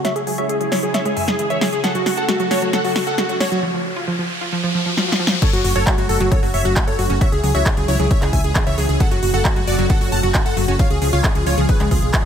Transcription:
Already playing: C#3, riser
0.05 G#3 E4 F#4 G#4 C#5 E5, snare, closed hi-hat
0.16 G#4, closed hi-hat
0.27 F#3 G#4, open hi-hat
0.38 F#4 C#5 E5, closed hi-hat
0.49 G#4, closed hi-hat
0.61 F#3 G#4, closed hi-hat
0.72 F#3 E4 C#5, snare, open hi-hat
0.83 F#3 G#4, closed hi-hat
0.94 C#5 E5, snare, closed hi-hat
1.05 G#3 G#4, closed hi-hat
1.16 F#2 E5 G#5, open hi-hat
1.28 G#4, snare, closed hi-hat
1.39 E3 G#4, closed hi-hat
1.50 E3 C#5 E5, closed hi-hat
1.61 F#3 G#4, snare, open hi-hat
1.73 G#4, closed hi-hat
1.84 F#3 A3 F#4 A4 F#5, snare, closed hi-hat
1.95 F#3 F#4, closed hi-hat
2.06 F#4, snare, open hi-hat
2.17 F#4 A4 F#5, closed hi-hat
2.29 G#3 F#4, snare, closed hi-hat
2.40 F#3 F#4, closed hi-hat
2.51 F#4 C#5, snare, open hi-hat
2.62 F#3 F#4, closed hi-hat
2.73 F#3 A4 F#5, snare, closed hi-hat
2.84 F#3 F#4, open hi-hat
2.96 F#4, snare, open hi-hat
3.07 F#4 A4 F#5, closed hi-hat
3.18 G#3 F#4, snare, closed hi-hat
3.29 F#3 F#4, closed hi-hat
3.40 F#4 C#5, snare, open hi-hat
3.52 F#3 F#4, closed hi-hat
3.63 F3
3.74 F3
3.96 F4
4.08 F3
4.19 F3
4.41 F4
4.52 F3, swell
4.64 F3
4.75 F3
4.86 F3
4.97 F3, snare
5.08 F3, snare
5.20 F3
5.27 F3, snare
5.42 C#3 F#3 A3 F#4 A4 C#5, kick, closed hi-hat, crash
5.53 F#1 F#3 F#4, closed hi-hat
5.64 F#1 F#4, open hi-hat
5.76 F#1 F#4 A4 C#5, closed hi-hat
5.87 G#3 F#4, kick, clap, closed hi-hat
5.98 F#1 F#3 F#4, closed hi-hat
6.09 F#1 F#4 A4, open hi-hat
6.20 F#1 F#3 F#4, closed hi-hat
6.31 F#3 A4 C#5, kick, closed hi-hat
6.43 F#1 F#3 F#4, open hi-hat
6.54 F#1 C#5 E5, open hi-hat
6.65 F#1 F#4, closed hi-hat
6.76 A3 F#4, kick, clap, closed hi-hat
6.87 F#1 A4 C#5, closed hi-hat
6.99 F#1 F#3 F#4, open hi-hat
7.10 F#1 C#4 F#4, closed hi-hat
7.21 E3 G#3 E4 F#4 C#5 E5, kick, closed hi-hat
7.32 C#2 G#4, closed hi-hat
7.43 C#2 F#3 G#4, open hi-hat
7.55 C#2 F#4 C#5 E5, closed hi-hat
7.66 G#4, kick, clap, closed hi-hat
7.77 C#2 F#3 G#4, closed hi-hat
7.88 C#2 F#3 E4 C#5, open hi-hat
7.99 C#2 F#3 G#4, closed hi-hat
8.11 C#5 E5, kick, closed hi-hat
8.22 C#2 G#3 G#4, clap, closed hi-hat
8.33 C#2 F#2 E5 G#5, kick, open hi-hat
8.44 C#2 G#4, closed hi-hat
8.55 E3 G#4, kick, clap, closed hi-hat
8.67 C#2 E3 C#5 E5, closed hi-hat
8.78 C#2 F#3 G#4, open hi-hat
8.89 C#2 G#4, closed hi-hat
9.00 F#3 A3 F#4 A4 F#5, kick, closed hi-hat
9.11 F#1 F#3 F#4, closed hi-hat
9.23 F#1 F#4, open hi-hat
9.34 F#1 F#4 A4 F#5, closed hi-hat
9.45 G#3 F#4, kick, clap, closed hi-hat
9.56 F#1 F#3 F#4, closed hi-hat
9.67 F#1 F#4 D5, open hi-hat
9.79 F#1 F#3 F#4, closed hi-hat
9.90 F#3 A4 F#5, kick, closed hi-hat
10.01 F#1 F#3 F#4, open hi-hat
10.12 F#1 F#5 A5, open hi-hat
10.23 F#1 F#4, closed hi-hat
10.34 A3 F#4, kick, clap, closed hi-hat
10.46 F#1 A4 F#5, closed hi-hat
10.57 F#1 F#3 F#4, open hi-hat
10.68 F#1 C#4 F#4, closed hi-hat
10.79 F3 G#3 F4 C#5 F5, kick, closed hi-hat
10.90 C#2 G#4, closed hi-hat
11.02 C#2 F3 G#4, open hi-hat
11.13 C#2 F4 C#5 F5, closed hi-hat
11.24 G#4, kick, clap, closed hi-hat
11.35 C#2 F3 G#4, closed hi-hat
11.46 C#2 F3 F4 C#5, open hi-hat
11.58 C#2 F3 G#4, closed hi-hat
11.69 G#4 B4, kick, closed hi-hat
11.80 C#2 G#3 G#4, clap, closed hi-hat
11.91 C#2 F2 F4 G#4, kick, open hi-hat
12.02 B1 G#4, closed hi-hat
12.14 F3 G#4, kick, clap, closed hi-hat

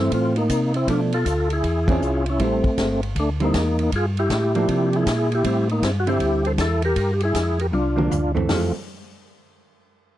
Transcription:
Already playing: G2 E3 A3 C4
0.00 C4 E4
0.11 A2 C4 F4, kick, ride
0.36 A#3 D#4, ride
0.49 C3, kick, hi-hat pedal, ride
0.74 C4 E4, ride
0.87 B2 F3 A3 D4 F4, kick, ride
1.12 F4 A4, ride
1.25 D2, kick, hi-hat pedal, ride
1.50 E4 G#4, ride
1.63 E2, kick, ride
1.88 E3 C4 C#4 D4 G#4, kick, ride
1.92 F4
2.01 C2, hi-hat pedal
2.26 C#4, ride
2.31 E4
2.39 A1 G3 C4 E4, kick, ride
2.44 A3 C4
2.64 A1, kick, ride
2.78 G1, kick, snare, hi-hat pedal, ride
3.03 ride
3.15 D2, kick, ride
3.19 A3 D4
3.40 D3 G3 C4 E4, ride
3.44 A#3 D#4
3.54 E2, kick, snare, hi-hat pedal, ride
3.79 ride
3.92 G2 F4 G#4, kick, ride
4.17 E4 G4, ride
4.30 A2, kick, snare, hi-hat pedal, ride
4.55 F3 A#3 D4, ride
4.68 C3, kick, ride
4.93 E4 G#4, ride
5.06 A#2, kick, snare, hi-hat pedal, ride
5.32 E4 G4, ride
5.44 A2 G3 C4 E4, kick, ride
5.69 A#3 D#4, ride
5.82 G2 C4 E4, kick, snare, hi-hat pedal, ride
6.00 F#4
6.07 D3 G3 C4 E4 G4, ride
6.20 D2, kick, ride
6.45 A4 C5, ride
6.58 E2 E4 A4, kick, snare, hi-hat pedal, ride
6.82 G4 A#4, ride
6.96 G2, kick, ride
7.13 G4
7.20 G#4, ride
7.25 E4
7.34 F2, kick, snare, hi-hat pedal, ride
7.59 G4 A#4, ride
7.72 C2 D4 F4, high tom
7.96 F3 A#3 D4, mid tom
8.11 D2, floor tom, hi-hat pedal
8.35 E3 A3 C4, floor tom
8.49 F2 E3 A3 C4 F4, snare, open hi-hat

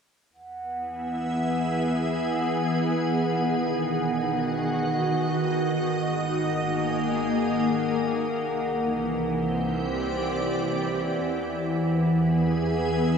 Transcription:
0.32 E2 E3 F#5
0.43 B3
0.79 E5
0.93 G#4
3.06 B1 D#3
4.20 F#4
4.28 D#5
5.79 G#1
6.00 A#3
6.32 G#4
8.52 C2 E3
9.03 C4
9.38 G4
9.60 D5
11.24 E2
11.86 B3
12.06 G#4
12.47 E5

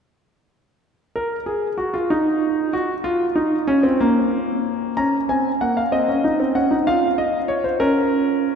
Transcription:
1.16 A#4
1.46 G#4
1.78 F#4
1.94 F4
2.10 D#4
2.73 F#4
3.04 F4
3.36 D#4
3.67 C#4
3.83 C4
4.01 A#3
4.97 C#4 A#5
5.29 C4 G#5
5.61 A#3 F#5
5.77 F5
5.92 C4 D#5
6.08 C#4
6.24 D#4
6.40 C4
6.55 C#4 F#5
6.71 D#4
6.87 F4 F5
7.18 D#5
7.48 C#5
7.64 C5
7.80 C#4 A#4

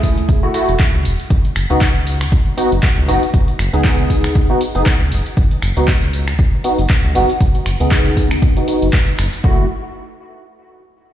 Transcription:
Already playing: C#2 A3 E4 G#4
0.03 kick, open hi-hat
0.18 closed hi-hat, shaker
0.29 kick, closed hi-hat, shaker
0.43 A3 E4 F#4, shaker
0.54 A3 E4 F#4, open hi-hat
0.68 E1, closed hi-hat, shaker
0.79 kick, clap, closed hi-hat, shaker
0.94 C#2, shaker
1.05 E1, open hi-hat
1.19 closed hi-hat, shaker
1.30 F#1, kick, closed hi-hat, shaker
1.44 closed hi-hat, shaker
1.56 F#1, finger snap, open hi-hat
1.70 C#2 B3 D#4 F#4, closed hi-hat, shaker
1.81 kick, clap, closed hi-hat, shaker
1.95 closed hi-hat, shaker
2.07 open hi-hat
2.21 finger snap, closed hi-hat, shaker
2.32 kick, closed hi-hat, shaker
2.46 shaker
2.57 B3 D#4 F#4, open hi-hat
2.72 F#1, closed hi-hat, shaker
2.83 kick, clap, closed hi-hat, shaker
2.97 C#2, shaker
3.08 F#1 B3 D#4 F#4, open hi-hat
3.23 closed hi-hat, shaker
3.34 F#1, kick, closed hi-hat, shaker
3.48 closed hi-hat, shaker
3.59 F#1, finger snap, open hi-hat
3.73 C#2 B3 D#4 G#4, closed hi-hat, shaker
3.84 kick, clap, closed hi-hat, shaker
3.99 closed hi-hat, shaker
4.10 kick, open hi-hat
4.24 finger snap, closed hi-hat, shaker
4.35 kick, closed hi-hat, shaker
4.50 B3 D#4 F#4, shaker
4.61 open hi-hat
4.75 F#1 B3 D#4 G#4, closed hi-hat, shaker
4.86 kick, clap, closed hi-hat, shaker
5.01 C#2, shaker
5.12 F#1, open hi-hat
5.26 closed hi-hat, shaker
5.37 F#1, kick, closed hi-hat, shaker
5.51 closed hi-hat, shaker
5.62 F#1, finger snap, open hi-hat
5.77 C#2 B3 D#4 F#4, closed hi-hat, shaker
5.88 kick, clap, closed hi-hat, shaker
6.02 closed hi-hat, shaker
6.13 open hi-hat
6.28 finger snap, closed hi-hat, shaker
6.38 kick, closed hi-hat, shaker
6.53 shaker
6.64 B3 D#4 F#4, open hi-hat
6.78 F#1, closed hi-hat, shaker
6.88 kick, clap, closed hi-hat, shaker
7.04 C#2, shaker
7.15 F#1 B3 D#4 F#4, open hi-hat
7.29 closed hi-hat, shaker
7.41 F#1, kick, closed hi-hat, shaker
7.54 closed hi-hat, shaker
7.66 F#1, finger snap, open hi-hat
7.80 C#2 B3 D#4 G#4, closed hi-hat, shaker
7.91 kick, clap, closed hi-hat, shaker
8.06 closed hi-hat, shaker
8.17 kick, open hi-hat
8.31 finger snap, closed hi-hat, shaker
8.42 kick, closed hi-hat, shaker
8.56 B3 D#4 F#4, closed hi-hat, shaker
8.68 B3 D#4 F#4, open hi-hat
8.82 F#1, closed hi-hat, shaker
8.93 kick, clap, closed hi-hat, shaker
9.07 closed hi-hat, shaker
9.19 F#1, finger snap, open hi-hat
9.33 closed hi-hat, shaker
9.44 F#1 A3 E4 F#4, kick

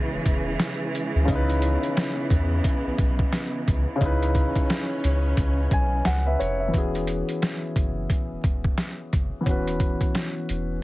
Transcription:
Already playing: C#3 E3 G#3 B3 C#4 F#4 B4
0.13 E1
0.26 E1, kick, closed hi-hat
0.60 snare, closed hi-hat
0.95 closed hi-hat
1.15 D2
1.25 C#2 C#3 C#4, kick, closed hi-hat
1.30 B3 D#4 E4
1.35 B4
1.49 closed hi-hat
1.62 closed hi-hat
1.83 closed hi-hat
1.97 snare, closed hi-hat
2.30 E2, kick, closed hi-hat
2.64 kick, closed hi-hat
2.86 B1
2.98 B1, kick, closed hi-hat
3.19 kick
3.32 snare, closed hi-hat
3.68 C#2, kick, closed hi-hat
3.96 C#3 C#4
4.01 C#2 C#4 D#4 E4, kick, closed hi-hat
4.06 B4
4.23 closed hi-hat
4.35 kick, closed hi-hat
4.56 kick, closed hi-hat
4.70 snare, closed hi-hat
5.04 C#2, closed hi-hat
5.37 C#2, kick, closed hi-hat
5.71 B1 G#5, kick, closed hi-hat
6.05 C#2 F#5, snare, closed hi-hat
6.27 B4 E5
6.39 F1 C#5, closed hi-hat
6.60 E5
6.68 E3 B3
6.73 E1 C#4 F#4, kick, closed hi-hat
6.78 G#4
6.95 closed hi-hat
7.07 closed hi-hat
7.29 closed hi-hat
7.42 snare, closed hi-hat
7.76 F#1, kick, closed hi-hat
8.10 kick, closed hi-hat
8.31 E1
8.44 E1, kick, closed hi-hat
8.64 kick
8.78 snare, closed hi-hat
9.13 F#1, kick, closed hi-hat
9.41 E3 B3
9.46 E1 C#4 F#4, kick, closed hi-hat
9.51 B4
9.68 closed hi-hat
9.80 kick, closed hi-hat
10.01 kick, closed hi-hat
10.15 snare, closed hi-hat
10.49 E1, closed hi-hat

